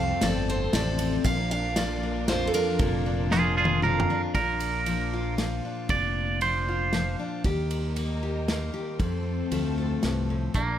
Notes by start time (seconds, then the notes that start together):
Already playing: C2 F2 F3 A3 C4 A4 F5
0.21 G1 F3 A4 D5, snare, ride
0.49 C4 C5
0.73 A1 C3 A4 D5, snare, ride
0.99 C4, ride
1.24 A#1 A#2 F3 A#3 D4 A#4 F5, kick, ride
1.51 D4 F5
1.76 F3 F4 D5, snare, ride
2.03 D4
2.28 F2 F4 C5, snare, ride
2.47 A4
2.54 D4 A#4, ride
2.79 F1 A#2, kick, ride
3.06 D4
3.31 F3 F4 G#4, snare
3.57 D4 F4 G#4
3.65 high tom
3.82 F2 F4 A#4, mid tom
4.00 mid tom
4.10 D4
4.35 A#1 A#2 D4 A#4, kick, ride
4.60 ride
4.86 F3 A#3, ride
5.13 F4
5.38 F3, snare, ride
5.65 D4
5.89 F1 A#2 D4 D5, kick, ride
6.41 F3 A#3 C5, ride
6.68 F4
6.93 F3, snare, ride
7.19 D4
7.44 D#2 D#3 G3 A#3 D#4 G4 A#4, kick, ride
7.71 ride
7.96 A#3 D#4, ride
8.23 G4
8.48 A#3, snare, ride
8.74 G4
8.99 F2 F3 A3 C4 A4, kick, ride
9.51 D2 F3 A3, ride
9.78 A4
10.03 C2 G2, snare, ride
10.30 A2
10.54 A#1 A#2 A#3 D4, kick, closed hi-hat